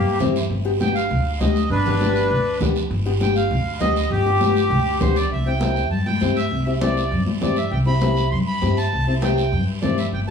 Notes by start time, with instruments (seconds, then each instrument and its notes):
Already playing: upright bass G2, accordion A#3 G4
0.20 upright bass G2, nylon-string guitar C4 E4 G4, high conga, low conga, short guiro
0.36 short guiro
0.50 upright bass G1, high conga, long guiro
0.65 nylon-string guitar B3 D4 G4
0.80 nylon-string guitar B3 D4 G4, accordion G5, high conga, short guiro
0.95 accordion F5, short guiro
1.11 upright bass D2, high conga, long guiro
1.40 upright bass D2, nylon-string guitar B3 D4 G4, accordion D#5, high conga, short guiro
1.56 short guiro
1.70 upright bass G1, accordion D4 B4, high conga, long guiro
1.86 nylon-string guitar B3 D4 G4, low conga
2.01 nylon-string guitar B3 D4 G4, high conga, short guiro
2.16 short guiro
2.30 upright bass D2, high conga, long guiro
2.60 upright bass D2, nylon-string guitar B3 D4 G4, high conga, low conga, short guiro
2.76 short guiro
2.90 upright bass G1, high conga, long guiro
3.06 nylon-string guitar B3 D4 G4
3.20 nylon-string guitar B3 D4 G4, accordion G5, high conga, short guiro
3.36 accordion F5, short guiro
3.51 upright bass D2, high conga, long guiro
3.80 upright bass D2, nylon-string guitar B3 D4 G4, accordion D#5, high conga, short guiro
3.96 short guiro
4.11 upright bass G1, accordion G4, high conga, long guiro
4.26 nylon-string guitar B3 D4 G4
4.41 nylon-string guitar B3 D4 G4, high conga, short guiro
4.57 short guiro
4.70 upright bass D2, high conga, long guiro
5.01 upright bass D2, nylon-string guitar B3 D4 G4, accordion C5, high conga, low conga, short guiro
5.16 accordion D5, short guiro
5.31 upright bass C2, accordion E5, high conga, long guiro
5.46 nylon-string guitar C4 E4 G4, accordion G5, high conga
5.61 nylon-string guitar C4 E4 G4, high conga, short guiro
5.76 short guiro
5.91 upright bass G2, accordion A5, long guiro
6.06 accordion G5, high conga
6.21 upright bass G2, nylon-string guitar C4 E4 G4, high conga, short guiro
6.36 accordion E5, short guiro
6.51 upright bass C2, high conga, long guiro
6.66 nylon-string guitar C4 E4 G4, accordion E5, high conga
6.81 nylon-string guitar C4 E4 G4, accordion D5, high conga, short guiro
6.97 short guiro
7.11 upright bass G2, long guiro
7.26 high conga
7.41 upright bass G2, nylon-string guitar C4 E4 G4, accordion D5, high conga, low conga, short guiro
7.56 accordion E5, short guiro
7.71 upright bass C2, accordion G5, high conga, long guiro
7.86 nylon-string guitar C4 E4 G4, accordion B5, high conga
8.01 nylon-string guitar C4 E4 G4, high conga, short guiro
8.17 short guiro
8.32 upright bass G2, accordion C6, long guiro
8.47 accordion B5
8.62 upright bass G2, nylon-string guitar C4 E4 G4, high conga, short guiro
8.77 accordion A5, short guiro
8.92 upright bass C2, high conga, long guiro
9.07 nylon-string guitar C4 E4 G4, accordion A5, high conga
9.22 nylon-string guitar C4 E4 G4, accordion G5, high conga, short guiro
9.38 short guiro
9.52 upright bass G2, long guiro
9.82 upright bass G2, nylon-string guitar C4 E4 G4, accordion D5, high conga, low conga, short guiro
9.98 accordion E5, short guiro
10.12 upright bass G1, accordion G5, high conga, long guiro
10.27 nylon-string guitar B3